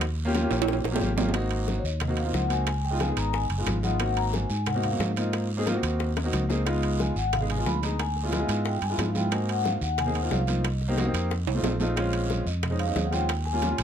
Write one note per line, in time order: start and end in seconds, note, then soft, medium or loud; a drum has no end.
0.00 0.45 D#2 loud
0.00 high bongo medium
0.00 high conga soft
0.00 high timbale loud
0.00 long guiro medium
0.18 high conga soft
0.25 0.32 A#3 loud
0.25 0.32 C#4 medium
0.25 0.32 F4 medium
0.25 0.33 G4 loud
0.33 0.40 A#3 loud
0.33 0.40 C#4 medium
0.33 0.41 F4 medium
0.33 0.41 G4 loud
0.33 high bongo medium
0.33 high conga loud
0.33 high timbale medium
0.33 short guiro medium
0.42 0.77 A#3 medium
0.42 0.78 C#4 medium
0.42 0.78 F4 medium
0.42 0.78 G4 medium
0.51 0.82 A#1 loud
0.51 high bongo soft
0.51 high conga soft
0.51 high timbale medium
0.51 short guiro medium
0.62 high timbale loud
0.68 high bongo medium
0.68 high conga soft
0.68 long guiro medium
0.73 high timbale medium
0.84 1.00 A#1 medium
0.84 high bongo medium
0.84 high conga soft
0.84 high timbale medium
0.92 1.10 A#3 medium
0.92 1.10 C#4 medium
0.92 1.10 F4 medium
0.92 1.11 G4 loud
0.96 low timbale loud
1.01 1.78 G#1 loud
1.01 low bongo medium
1.01 high conga medium
1.01 short guiro medium
1.17 1.29 A#3 medium
1.17 1.29 C#4 medium
1.17 1.29 F4 medium
1.17 1.30 G4 medium
1.17 low bongo medium
1.17 high conga medium
1.17 low timbale loud
1.17 short guiro medium
1.29 1.80 A#3 medium
1.29 low timbale medium
1.33 1.80 C4 medium
1.33 1.81 D#4 medium
1.33 1.81 F#4 loud
1.33 high bongo medium
1.33 high timbale loud
1.33 long guiro medium
1.51 high conga soft
1.51 high timbale medium
1.68 high bongo medium
1.68 high conga medium
1.68 short guiro medium
1.79 1.85 C#5 medium
1.84 2.30 D#2 medium
1.84 2.19 D#5 medium
1.84 high conga soft
1.84 short guiro medium
2.00 high bongo medium
2.00 high conga soft
2.00 low conga medium
2.00 high timbale loud
2.00 long guiro medium
2.08 2.20 A#3 medium
2.08 2.21 C4 medium
2.08 2.21 D#4 medium
2.08 2.21 F#4 medium
2.17 2.33 F5 medium
2.17 high conga soft
2.17 high timbale medium
2.24 2.42 A#3 medium
2.24 2.43 C4 medium
2.24 2.43 D#4 medium
2.24 2.43 F4 medium
2.33 3.11 C#2 medium
2.33 2.52 F#5 medium
2.33 high bongo medium
2.33 low bongo medium
2.33 high conga medium
2.33 short guiro medium
2.48 2.66 A#3 medium
2.48 2.67 C4 medium
2.48 2.67 D#4 medium
2.48 2.67 F#4 medium
2.48 2.67 G#5 medium
2.48 high timbale medium
2.48 short guiro medium
2.67 2.83 G#5 loud
2.67 high bongo medium
2.67 high conga soft
2.67 high timbale loud
2.67 long guiro medium
2.84 3.00 G5 loud
2.84 high bongo soft
2.84 high conga soft
2.91 2.97 G#3 medium
2.91 2.98 B3 medium
2.91 2.98 D#4 medium
2.91 2.98 F4 medium
2.99 3.06 G#3 medium
2.99 3.06 B3 medium
2.99 3.06 D#4 medium
2.99 3.07 F4 medium
2.99 3.18 G#5 loud
2.99 high bongo medium
2.99 high conga loud
2.99 high timbale medium
2.99 short guiro medium
3.08 3.44 G#3 medium
3.08 3.44 B3 medium
3.08 3.44 D#4 medium
3.08 3.44 G#4 medium
3.17 3.48 G#1 medium
3.17 3.25 A#5 loud
3.17 high bongo soft
3.17 high timbale medium
3.17 short guiro medium
3.33 3.65 G#5 loud
3.33 high bongo medium
3.33 high conga soft
3.33 long guiro medium
3.50 3.66 F#1 medium
3.50 high conga soft
3.50 high timbale medium
3.58 3.76 G#3 medium
3.58 3.76 B3 medium
3.58 3.77 D#4 medium
3.58 3.77 F4 medium
3.67 4.44 G#1 loud
3.67 high bongo medium
3.67 low bongo medium
3.67 high conga medium
3.67 high timbale medium
3.67 short guiro medium
3.83 3.95 G#3 medium
3.83 3.95 B3 medium
3.83 3.96 D#4 medium
3.83 3.96 F4 medium
3.83 4.18 F#5 medium
3.83 high bongo soft
3.83 high conga medium
3.83 short guiro medium
4.00 4.47 A#3 medium
4.00 4.47 C4 medium
4.00 4.47 D#4 medium
4.00 4.48 F#4 medium
4.00 high bongo medium
4.00 high timbale loud
4.00 long guiro medium
4.17 4.24 A#5 loud
4.17 high conga soft
4.17 high timbale medium
4.33 4.68 G#5 medium
4.33 high bongo medium
4.33 high conga medium
4.33 short guiro medium
4.50 4.97 G#2 medium
4.50 short guiro medium
4.66 4.84 F#5 loud
4.66 high bongo medium
4.66 high conga soft
4.66 low conga medium
4.66 high timbale medium
4.66 long guiro medium
4.74 4.87 A#3 medium
4.74 4.87 C4 medium
4.74 4.87 D#4 medium
4.74 4.88 F#4 medium
4.83 5.18 F5 medium
4.83 high conga soft
4.83 low conga medium
4.83 high timbale medium
4.91 5.09 A#3 medium
4.91 5.09 C4 medium
4.91 5.10 D#4 medium
4.91 5.10 F#4 medium
4.99 5.77 G#2 medium
4.99 high bongo medium
4.99 low bongo medium
4.99 high conga medium
4.99 low timbale medium
4.99 short guiro medium
5.16 5.46 A#3 medium
5.16 5.46 C4 medium
5.16 5.47 D#4 medium
5.16 5.47 F4 medium
5.16 5.48 D#5 medium
5.16 high timbale medium
5.16 short guiro medium
5.33 high bongo medium
5.33 high conga soft
5.33 high timbale medium
5.33 long guiro medium
5.50 high bongo soft
5.50 high conga soft
5.57 5.64 A#3 medium
5.57 5.64 C4 medium
5.57 5.64 D#4 medium
5.57 5.65 G#4 loud
5.66 5.72 A#3 medium
5.66 5.72 C4 medium
5.66 5.73 D#4 medium
5.66 5.73 F4 loud
5.66 high bongo medium
5.66 high conga loud
5.66 high timbale medium
5.66 short guiro medium
5.73 6.09 A#3 medium
5.73 6.09 C4 medium
5.73 6.10 D#4 medium
5.73 6.10 F#4 medium
5.83 6.29 D#2 medium
5.83 high bongo soft
5.83 high timbale loud
5.83 short guiro medium
6.00 high bongo medium
6.00 high conga soft
6.00 long guiro medium
6.17 high bongo loud
6.17 high conga soft
6.17 high timbale medium
6.23 6.42 A#3 medium
6.23 6.42 C4 medium
6.23 6.42 D#4 medium
6.23 6.43 F#4 medium
6.33 7.10 C#2 loud
6.33 low bongo medium
6.33 high conga medium
6.33 high timbale loud
6.33 short guiro medium
6.49 6.61 A#3 medium
6.49 6.61 C4 medium
6.49 6.62 D#4 medium
6.49 6.62 G#4 medium
6.49 low bongo medium
6.49 short guiro medium
6.65 7.13 G#3 medium
6.65 7.13 B3 medium
6.65 7.13 D#4 medium
6.65 7.13 F4 loud
6.65 high bongo medium
6.65 high timbale loud
6.65 long guiro medium
6.83 high conga soft
6.83 high timbale medium
6.99 7.16 G#5 medium
6.99 high bongo medium
6.99 high conga loud
6.99 short guiro medium
7.16 7.62 G#1 medium
7.16 7.32 F#5 medium
7.16 high conga soft
7.16 short guiro medium
7.33 7.49 F5 loud
7.33 high bongo medium
7.33 high conga soft
7.33 low conga medium
7.33 high timbale loud
7.33 long guiro medium
7.40 7.52 G#3 medium
7.40 7.53 B3 medium
7.40 7.53 D#4 medium
7.40 7.53 G#4 medium
7.50 7.67 G#5 loud
7.50 high conga soft
7.50 low conga medium
7.50 high timbale medium
7.57 7.75 G#3 medium
7.57 7.75 B3 medium
7.57 7.76 D#4 medium
7.57 7.76 F4 medium
7.66 8.43 D2 medium
7.66 7.74 B5 medium
7.66 high bongo medium
7.66 low bongo medium
7.66 high conga medium
7.66 short guiro medium
7.82 7.99 G#3 medium
7.82 8.00 B3 medium
7.82 8.00 D#4 medium
7.82 8.00 G#4 medium
7.82 7.99 A#5 medium
7.82 high timbale medium
7.82 short guiro medium
7.99 8.68 G#5 loud
7.99 high bongo medium
7.99 high timbale medium
7.99 long guiro medium
8.16 high bongo soft
8.16 high conga soft
8.23 8.29 G#3 medium
8.23 8.30 B3 medium
8.23 8.30 E4 medium
8.23 8.31 F4 medium
8.31 8.38 G#3 medium
8.31 8.38 B3 medium
8.31 8.38 E4 medium
8.31 8.39 F4 medium
8.31 high bongo medium
8.31 high conga loud
8.31 high timbale medium
8.31 short guiro medium
8.40 8.75 G#3 medium
8.40 8.75 B3 medium
8.40 8.76 E4 medium
8.40 8.76 F4 medium
8.49 8.80 G#2 medium
8.49 high bongo soft
8.49 high timbale medium
8.49 short guiro medium
8.65 8.82 G5 loud
8.65 high bongo medium
8.65 high conga soft
8.65 long guiro medium
8.82 8.97 G2 medium
8.82 8.98 G#5 medium
8.82 high timbale medium
8.90 9.08 G#3 medium
8.90 9.08 B3 medium
8.90 9.08 E4 medium
8.90 9.09 F4 medium
8.98 9.76 G#2 loud
8.98 9.15 F5 medium
8.98 high bongo medium
8.98 low bongo medium
8.98 high conga medium
8.98 high timbale medium
8.98 low timbale medium
8.98 short guiro medium
9.15 9.27 G#3 medium
9.15 9.27 B3 medium
9.15 9.27 E4 medium
9.15 9.28 F4 medium
9.15 9.24 G5 medium
9.15 high bongo soft
9.15 high conga medium
9.15 short guiro medium
9.31 9.78 A#3 medium
9.31 9.78 C4 medium
9.31 9.78 D#4 medium
9.31 9.79 F#4 medium
9.31 9.48 G#5 medium
9.31 high bongo medium
9.31 high conga soft
9.31 high timbale loud
9.31 long guiro medium
9.49 9.66 F#5 loud
9.49 high conga soft
9.49 high timbale medium
9.65 9.83 F5 medium
9.65 high bongo medium
9.65 high conga loud
9.65 short guiro medium
9.81 10.28 D#2 medium
9.81 9.98 F#5 loud
9.81 high conga soft
9.81 short guiro medium
9.98 10.14 G#5 loud
9.98 high bongo medium
9.98 high conga soft
9.98 low conga medium
9.98 high timbale medium
9.98 long guiro medium
10.05 10.18 A#3 medium
10.05 10.18 C4 medium
10.05 10.18 D#4 medium
10.05 10.19 G#4 medium
10.15 10.23 F#5 medium
10.15 high conga soft
10.15 high timbale medium
10.22 10.40 A#3 medium
10.22 10.40 C4 medium
10.22 10.40 D#4 medium
10.22 10.41 F4 medium
10.31 11.08 C2 medium
10.31 10.40 F5 medium
10.31 high bongo medium
10.31 low bongo medium
10.31 high conga medium
10.31 low timbale medium
10.31 short guiro medium
10.47 10.64 A#3 medium
10.47 10.64 C4 medium
10.47 10.65 D#4 medium
10.47 10.65 F4 medium
10.47 11.77 D#5 medium
10.47 high conga medium
10.47 high timbale medium
10.47 short guiro medium
10.64 high bongo medium
10.64 high conga soft
10.64 high timbale loud
10.64 long guiro medium
10.81 high bongo soft
10.81 high conga soft
10.88 10.95 A#3 medium
10.88 10.95 C4 medium
10.88 10.95 D#4 medium
10.88 10.96 G4 loud
10.97 11.03 A#3 medium
10.97 11.04 C4 medium
10.97 11.04 D#4 medium
10.97 11.04 F#4 loud
10.97 high bongo medium
10.97 high conga loud
10.97 high timbale medium
10.97 short guiro medium
11.05 11.30 A#3 medium
11.05 11.31 C4 medium
11.05 11.31 D#4 medium
11.05 11.31 G4 medium
11.13 11.45 F2 medium
11.13 high bongo soft
11.13 high timbale medium
11.13 short guiro medium
11.31 high bongo medium
11.31 high conga soft
11.31 long guiro medium
11.47 11.62 C2 medium
11.47 high conga soft
11.47 high timbale loud
11.54 11.72 A3 medium
11.54 11.73 C4 medium
11.54 11.73 D#4 medium
11.54 11.73 F4 medium
11.63 12.40 A#1 loud
11.63 high bongo medium
11.63 low bongo medium
11.63 high conga medium
11.63 low timbale loud
11.63 short guiro medium
11.79 11.91 A3 medium
11.79 11.92 C4 medium
11.79 11.92 D#4 medium
11.79 11.92 F4 loud
11.79 high bongo soft
11.79 low timbale medium
11.79 short guiro medium
11.96 12.43 G#3 medium
11.96 12.43 C4 medium
11.96 12.43 C#4 medium
11.96 12.44 F4 loud
11.96 high bongo medium
11.96 high conga soft
11.96 high timbale loud
11.96 long guiro medium
12.13 high conga soft
12.13 high timbale medium
12.30 high bongo medium
12.30 high conga loud
12.30 short guiro medium
12.46 12.92 F2 medium
12.46 12.81 D#5 medium
12.46 high conga soft
12.46 short guiro medium
12.63 high bongo medium
12.63 high conga soft
12.63 low conga medium
12.63 high timbale medium
12.63 long guiro medium
12.70 12.82 G#3 medium
12.70 12.83 C4 medium
12.70 12.83 C#4 medium
12.70 12.83 D#4 medium
12.79 13.07 F5 loud
12.79 high timbale medium
12.86 13.04 G#3 medium
12.86 13.05 C4 medium
12.86 13.05 C#4 medium
12.86 13.05 D#4 medium
12.96 13.73 D#2 loud
12.96 high bongo medium
12.96 low bongo medium
12.96 high conga medium
12.96 low timbale medium
12.96 short guiro medium
13.06 13.13 F#5 medium
13.11 13.28 G#3 medium
13.11 13.29 C4 medium
13.11 13.29 C#4 medium
13.11 13.29 F4 medium
13.11 13.44 G5 loud
13.11 high conga medium
13.11 high timbale medium
13.11 short guiro medium
13.29 high bongo medium
13.29 high conga soft
13.29 high timbale loud
13.29 long guiro medium
13.45 13.77 G#5 loud
13.45 high bongo soft
13.45 high conga soft
13.53 13.59 G3 medium
13.53 13.60 A#3 medium
13.53 13.60 C#4 medium
13.53 13.60 F4 medium
13.61 13.68 G3 medium
13.61 13.68 A#3 medium
13.61 13.68 C#4 medium
13.61 13.69 F4 medium
13.61 high bongo medium
13.61 high conga loud
13.61 high timbale medium
13.61 short guiro medium
13.69 13.83 G3 medium
13.69 13.83 A#3 medium
13.69 13.83 C#4 medium
13.69 13.83 F4 medium
13.78 13.83 A#1 medium
13.78 13.83 G#5 loud
13.78 high bongo soft
13.78 high timbale medium
13.78 short guiro medium